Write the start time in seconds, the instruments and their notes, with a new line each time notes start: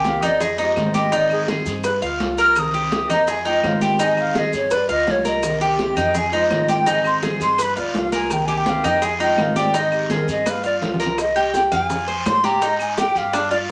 Already playing: upright bass C2, cuban tres G4
0.04 steel-string acoustic guitar C3 D#3 A#3 C4 G4, high bongo, high conga, short guiro, maracas
0.08 flute F5
0.22 upright bass F2, steel-string acoustic guitar A#3 C4 G4, cuban tres D#4, flute D5, high bongo, low conga, short guiro, claves, maracas
0.40 cuban tres G#4, flute D#5, muted steel-string acoustic guitar stroke, high bongo, high conga, low conga, long guiro, maracas
0.58 steel-string acoustic guitar G#3 C4 F4, cuban tres D#4, flute G4, high conga, maracas
0.75 upright bass G#2, steel-string acoustic guitar C3 D#3 G#3 C4 F4, high bongo, low bongo, high conga, short guiro, claves, maracas
0.80 flute C5
0.94 cuban tres G4, flute D#5, high bongo, high conga, short guiro, maracas
1.12 steel-string acoustic guitar D#3 C4 D#4 G#4, cuban tres D#4, flute D5, high bongo, long guiro, maracas
1.30 flute G#4, high bongo, high conga, claves, maracas
1.48 steel-string acoustic guitar D#3 G3 C4 D#4 G#4, cuban tres G#4, high bongo, high conga, short guiro, maracas
1.66 upright bass G2, steel-string acoustic guitar C4 D#4 G#4, high bongo, high conga, short guiro, maracas
1.84 cuban tres B4, muted steel-string acoustic guitar stroke, high bongo, high conga, long guiro, claves, maracas
2.01 upright bass D2, steel-string acoustic guitar B3 F4, cuban tres F5, high conga, maracas
2.19 upright bass C2, steel-string acoustic guitar G3 B3 F4, high bongo, low bongo, high conga, short guiro, maracas
2.38 cuban tres A#4, flute F6, high bongo, short guiro, maracas
2.55 steel-string acoustic guitar C3 D#3 A#3 C4 G4, flute D#6, high bongo, high conga, long guiro, claves, maracas
2.74 cuban tres G4, high bongo, high conga, maracas
2.92 steel-string acoustic guitar C3 D#3 A#3 C4 G4, high bongo, high conga, short guiro, maracas
3.09 upright bass F2, steel-string acoustic guitar A#3 C4 G4, cuban tres D#4, flute A#5, high bongo, low conga, short guiro, claves, maracas
3.28 cuban tres G#4, flute G#5, muted steel-string acoustic guitar stroke, high bongo, high conga, long guiro, maracas
3.45 steel-string acoustic guitar G#3 C4 F4, cuban tres D#4, flute G5, high conga, maracas
3.62 upright bass G#2, steel-string acoustic guitar C3 D#3 G#3 C4 F4, high bongo, low bongo, high conga, short guiro, claves, maracas
3.67 flute F5
3.81 cuban tres G4, flute G5, high bongo, high conga, short guiro, maracas
3.99 steel-string acoustic guitar D#3 C4 D#4 G#4, cuban tres D#4, flute G#5, high bongo, high conga, long guiro, maracas
4.17 flute F5, high bongo, high conga, claves, maracas
4.34 steel-string acoustic guitar D#3 G3 C4 D#4 G#4, cuban tres G#4, high bongo, high conga, short guiro, maracas
4.39 flute D#5
4.53 upright bass G2, steel-string acoustic guitar C4 D#4 G#4, flute C#5, high bongo, high conga, short guiro, maracas
4.71 cuban tres B4, flute D5, muted steel-string acoustic guitar stroke, high bongo, high conga, long guiro, claves, maracas
4.89 upright bass D2, steel-string acoustic guitar B3 F4, flute D#5, cuban tres F5, high conga, maracas
5.07 upright bass C2, steel-string acoustic guitar G3 B3 F4, high bongo, low bongo, high conga, short guiro, maracas
5.11 flute C#5
5.25 cuban tres A#4, flute D#5, high bongo, high conga, short guiro, maracas
5.42 steel-string acoustic guitar C3 D#3 A#3 C4 G4, high bongo, high conga, long guiro, claves, maracas
5.61 cuban tres G4, high bongo, high conga, maracas
5.78 steel-string acoustic guitar C3 D#3 A#3 C4 G4, high bongo, high conga, short guiro, maracas
5.96 upright bass F2, steel-string acoustic guitar A#3 C4 G4, cuban tres D#4, flute G5, high bongo, low conga, short guiro, claves, maracas
6.14 cuban tres G#4, flute G#5, muted steel-string acoustic guitar stroke, high bongo, high conga, low conga, long guiro, maracas
6.32 steel-string acoustic guitar G#3 C4 F4, cuban tres D#4, flute C5, high conga, maracas
6.50 upright bass G#2, steel-string acoustic guitar C3 D#3 G#3 C4 F4, high bongo, low bongo, high conga, short guiro, claves, maracas
6.55 flute D#5
6.68 cuban tres G4, flute G5, high bongo, high conga, short guiro, maracas
6.86 steel-string acoustic guitar D#3 C4 D#4 G#4, cuban tres D#4, high bongo, high conga, long guiro, maracas
6.90 flute G#5
7.04 flute C6, high bongo, high conga, claves, maracas
7.22 steel-string acoustic guitar D#3 G3 C4 D#4 G#4, cuban tres G#4, high bongo, high conga, short guiro, maracas
7.40 upright bass G2, steel-string acoustic guitar C4 D#4 G#4, flute C6, high bongo, high conga, short guiro, maracas
7.58 cuban tres B4, muted steel-string acoustic guitar stroke, high bongo, high conga, long guiro, claves, maracas
7.62 flute B5
7.76 upright bass D2, steel-string acoustic guitar B3 F4, flute D5, cuban tres F5, high conga, maracas
7.94 upright bass C2, steel-string acoustic guitar G3 B3 F4, high bongo, low bongo, high conga, short guiro, maracas
7.98 flute F5
8.12 cuban tres A#4, flute G#5, high bongo, high conga, short guiro, maracas
8.29 steel-string acoustic guitar C3 D#3 A#3 C4 G4, flute G5, high bongo, high conga, long guiro, claves, maracas
8.46 cuban tres G4, flute G#5, high bongo, high conga, maracas
8.57 flute G5
8.65 steel-string acoustic guitar C3 D#3 A#3 C4 G4, high bongo, high conga, short guiro, maracas
8.69 flute F5
8.83 upright bass F2, steel-string acoustic guitar A#3 C4 G4, cuban tres D#4, flute G5, high bongo, low conga, short guiro, claves, maracas
9.01 cuban tres G#4, muted steel-string acoustic guitar stroke, high bongo, high conga, long guiro, maracas
9.05 flute G#5
9.18 steel-string acoustic guitar G#3 C4 F4, cuban tres D#4, flute G5, high conga, maracas
9.37 upright bass G#2, steel-string acoustic guitar C3 D#3 G#3 C4 F4, high bongo, low bongo, high conga, short guiro, claves, maracas
9.42 flute F5
9.56 cuban tres G4, flute D5, high bongo, high conga, short guiro, maracas
9.73 steel-string acoustic guitar D#3 C4 D#4 G#4, cuban tres D#4, high bongo, high conga, long guiro, maracas
9.78 flute D#5
9.92 flute G4, high bongo, high conga, claves, maracas
10.09 steel-string acoustic guitar D#3 G3 C4 D#4 G#4, cuban tres G#4, high bongo, high conga, short guiro, maracas
10.14 flute A#4
10.27 upright bass G2, steel-string acoustic guitar C4 D#4 G#4, flute D#5, high bongo, high conga, short guiro, maracas
10.46 cuban tres B4, muted steel-string acoustic guitar stroke, high bongo, high conga, long guiro, claves, maracas
10.50 flute F5
10.63 steel-string acoustic guitar B3 F4, flute D5, cuban tres F5, maracas
10.81 upright bass C2, steel-string acoustic guitar G3 B3 F4, high bongo, low bongo, low conga, short guiro, maracas
10.94 low conga
11.00 cuban tres A#4, high bongo, short guiro, maracas
11.06 low conga
11.18 flute D#5, high bongo, high conga, long guiro, claves, maracas
11.36 cuban tres G4, high conga
11.54 flute G5, high bongo, high conga, short guiro, maracas
11.72 upright bass F2, cuban tres F5, flute G#5, high conga, low conga, short guiro, claves, maracas
11.89 high bongo, high conga, low conga, long guiro, maracas
12.08 cuban tres C5, high conga
12.26 upright bass G#2, flute C6, high bongo, low bongo, high conga, short guiro, claves, maracas
12.43 cuban tres G4, flute A#5, high conga, short guiro, maracas
12.61 cuban tres D#4, high bongo, high conga, long guiro, maracas
12.79 flute G#5, high conga, claves, maracas
12.97 cuban tres G4, flute G5, high bongo, high conga, short guiro, maracas
13.15 upright bass G2, flute F5, high bongo, high conga, short guiro, maracas
13.33 cuban tres D4, high bongo, high conga, long guiro, claves, maracas
13.51 cuban tres F4, flute D5, high bongo, high conga